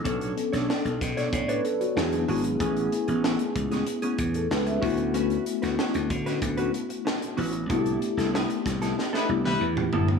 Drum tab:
HH |xxxx-xxxxxxx-xox|xxxx-xxxxxxx-xox|xxxx-xxxxxxx-xox|xxxx-xxx--------|
SD |---oo-oo----o---|----o--o----o---|---oo--o----o---|---oo-oooo------|
T1 |----------------|----------------|----------------|-----------o----|
T2 |----------------|----------------|----------------|-------------o--|
FT |----------------|----------------|----------------|--------------oo|
BD |o-----o-o-------|o-----o---o---o-|------o-o-------|o-----o---------|